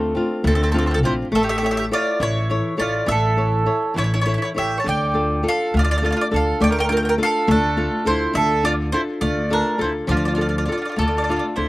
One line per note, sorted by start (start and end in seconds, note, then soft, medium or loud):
0.00 0.15 D2 medium
0.00 0.14 A3 medium
0.00 0.14 C4 soft
0.00 0.42 C4 medium
0.00 0.15 D4 soft
0.00 0.15 F4 soft
0.00 0.42 A4 medium
0.15 0.62 C4 medium
0.15 0.63 D4 soft
0.15 0.63 F4 medium
0.44 1.03 D2 loud
0.44 1.01 A3 medium
0.44 0.53 C4 medium
0.44 0.53 A4 medium
0.55 0.62 C4 soft
0.55 0.61 A4 medium
0.63 0.69 C4 medium
0.63 0.69 A4 medium
0.71 0.77 C4 medium
0.71 1.02 C4 medium
0.71 1.03 D4 medium
0.71 1.03 F4 medium
0.71 0.77 A4 medium
0.78 0.84 C4 medium
0.78 0.84 A4 medium
0.86 0.90 C4 medium
0.86 0.92 A4 medium
0.91 0.97 C4 medium
0.91 0.99 A4 medium
1.03 1.22 A#1 medium
1.03 1.26 C4 medium
1.03 1.27 D4 medium
1.03 1.14 E4 medium
1.03 1.27 F4 medium
1.03 1.13 C5 medium
1.32 1.88 A1 medium
1.32 1.89 A3 medium
1.32 1.41 E5 medium
1.36 1.41 A4 medium
1.43 1.49 G4 medium
1.43 1.48 E5 medium
1.49 1.56 G4 medium
1.49 1.56 E5 medium
1.58 1.63 G4 medium
1.58 1.64 E5 medium
1.62 1.90 E4 medium
1.62 1.70 G4 medium
1.62 1.91 A4 soft
1.62 1.91 C#5 soft
1.62 1.70 E5 medium
1.71 1.78 G4 medium
1.71 1.76 E5 medium
1.77 1.85 G4 medium
1.77 1.84 E5 medium
1.91 2.38 E4 medium
1.91 2.19 F4 medium
1.91 2.38 A4 medium
1.91 2.38 C#5 medium
1.91 2.21 D5 loud
2.20 2.58 A1 loud
2.20 2.77 E3 medium
2.20 2.75 E4 medium
2.20 2.76 C#5 loud
2.50 2.76 E4 medium
2.50 2.76 A4 medium
2.50 2.77 C#5 medium
2.77 2.98 A1 medium
2.77 3.25 E4 medium
2.77 3.25 A4 soft
2.77 3.25 C#5 medium
2.77 3.08 D5 medium
2.81 3.07 F4 medium
3.06 3.65 A1 loud
3.06 3.64 E3 medium
3.06 3.92 E5 loud
3.11 3.93 A4 medium
3.37 3.65 E4 soft
3.37 3.65 A4 soft
3.37 3.65 C#5 medium
3.66 4.13 E4 soft
3.66 4.14 A4 soft
3.66 4.14 C#5 medium
3.94 4.35 A1 loud
3.94 4.52 E3 medium
3.94 4.03 E4 medium
3.98 4.03 C#5 loud
4.04 4.12 E4 soft
4.04 4.11 C#5 medium
4.14 4.19 E4 medium
4.14 4.20 C#5 medium
4.22 4.27 E4 medium
4.22 4.24 C#5 medium
4.26 4.53 E4 medium
4.26 4.34 E4 medium
4.26 4.54 A4 soft
4.26 4.33 C#5 medium
4.26 4.55 C#5 medium
4.34 4.42 E4 medium
4.34 4.41 C#5 medium
4.42 4.49 E4 medium
4.42 4.49 C#5 medium
4.54 4.75 A1 medium
4.54 4.78 E4 medium
4.54 4.79 A4 soft
4.54 4.79 C#5 medium
4.54 4.77 E5 medium
4.59 4.78 G4 medium
4.78 4.84 C#5 medium
4.78 4.85 A5 medium
4.84 5.43 D2 loud
4.84 5.42 D3 medium
4.84 5.42 D5 medium
4.89 5.48 G5 medium
5.14 5.42 D4 soft
5.14 5.42 F4 soft
5.14 5.42 A4 soft
5.43 5.90 D4 soft
5.43 5.91 F4 soft
5.43 5.91 A4 medium
5.48 5.74 A4 loud
5.48 5.76 F5 loud
5.74 6.12 D2 loud
5.74 6.30 A3 medium
5.74 5.82 F4 medium
5.79 5.83 D5 medium
5.84 5.89 F4 medium
5.84 5.90 D5 medium
5.91 5.97 F4 medium
5.91 5.96 D5 medium
5.98 6.03 F4 medium
5.98 6.04 D5 medium
6.02 6.30 D4 medium
6.02 6.30 F4 soft
6.02 6.09 F4 medium
6.02 6.30 A4 medium
6.02 6.11 D5 medium
6.11 6.15 F4 medium
6.11 6.19 D5 medium
6.17 6.24 F4 medium
6.21 6.27 D5 medium
6.31 6.51 D2 medium
6.31 6.78 D4 soft
6.31 6.78 F4 soft
6.31 6.78 A4 medium
6.31 6.59 A4 medium
6.36 6.61 F5 medium
6.60 7.17 D2 loud
6.60 7.17 A3 medium
6.60 6.68 D5 loud
6.60 6.69 G5 medium
6.70 6.76 A#4 medium
6.70 6.77 G5 medium
6.78 6.83 A#4 medium
6.78 6.85 G5 loud
6.84 6.91 A#4 medium
6.89 7.17 D4 soft
6.89 7.18 F4 soft
6.89 7.17 A4 medium
6.89 6.98 A#4 medium
6.89 6.93 G5 medium
6.97 7.00 G5 medium
7.03 7.07 A#4 medium
7.03 7.08 G5 medium
7.09 7.14 A#4 medium
7.09 7.14 G5 medium
7.18 7.65 D4 medium
7.18 7.66 F4 soft
7.18 7.65 A4 medium
7.23 7.48 A4 loud
7.23 7.48 F5 loud
7.47 7.86 D2 loud
7.47 8.04 A3 medium
7.47 8.04 A4 medium
7.51 8.04 D4 medium
7.77 8.04 D4 medium
7.77 8.05 F4 medium
7.77 8.05 A4 medium
8.05 8.25 D2 medium
8.05 8.52 D4 medium
8.05 8.53 F4 medium
8.05 8.52 A4 medium
8.05 8.33 C5 medium
8.09 8.34 E4 medium
8.33 8.91 D2 loud
8.33 8.91 D3 medium
8.33 8.63 A4 medium
8.33 8.62 E5 loud
8.63 8.92 D4 medium
8.63 8.92 F4 soft
8.63 8.74 F4 medium
8.63 8.93 A4 medium
8.63 8.72 D5 loud
8.92 9.40 D4 medium
8.92 9.02 E4 medium
8.92 9.40 F4 medium
8.92 9.41 A4 medium
8.92 9.00 C5 medium
9.21 9.60 D2 loud
9.21 9.79 A3 medium
9.21 9.50 F4 medium
9.21 9.49 D5 medium
9.50 9.77 D4 medium
9.50 9.80 D4 medium
9.50 9.78 F4 soft
9.50 9.78 A4 medium
9.50 9.79 A#4 medium
9.78 9.99 D2 medium
9.78 10.27 D4 soft
9.78 10.27 F4 soft
9.78 10.27 A4 medium
9.78 9.89 C5 medium
9.84 9.91 E4 medium
10.07 10.66 D2 loud
10.07 10.66 F3 medium
10.07 10.17 F4 medium
10.07 10.16 D5 medium
10.17 10.25 F4 soft
10.17 10.24 D5 medium
10.25 10.33 F4 medium
10.25 10.32 D5 medium
10.35 10.66 D4 soft
10.35 10.41 F4 medium
10.35 10.67 F4 soft
10.35 10.68 A4 soft
10.35 10.40 D5 medium
10.41 10.48 F4 medium
10.41 10.47 D5 medium
10.49 10.55 F4 soft
10.49 10.55 D5 medium
10.58 10.63 F4 soft
10.58 10.63 D5 medium
10.65 11.16 D4 soft
10.65 10.71 F4 soft
10.65 11.16 F4 soft
10.65 11.17 A4 medium
10.65 10.71 D5 soft
10.72 10.77 F4 medium
10.72 10.76 D5 medium
10.78 10.84 D5 soft
10.82 10.86 F4 soft
10.82 10.90 D5 soft
10.89 10.94 F4 soft
10.89 10.98 D5 soft
10.96 11.37 D2 medium
10.96 11.55 A3 medium
10.96 11.00 F4 soft
10.96 11.54 A4 medium
11.01 11.07 F4 soft
11.01 11.06 D5 medium
11.08 11.15 F4 soft
11.08 11.14 D5 soft
11.17 11.21 F4 soft
11.17 11.23 D5 medium
11.22 11.29 F4 soft
11.22 11.30 D5 medium
11.29 11.56 D4 medium
11.29 11.56 F4 medium
11.29 11.35 F4 medium
11.29 11.57 A4 medium
11.29 11.37 D5 medium
11.36 11.43 F4 medium
11.36 11.45 D5 medium
11.56 11.69 D2 medium
11.56 11.69 D4 medium
11.56 11.69 E4 medium
11.56 11.69 F4 soft
11.56 11.69 A4 medium
11.56 11.69 C5 medium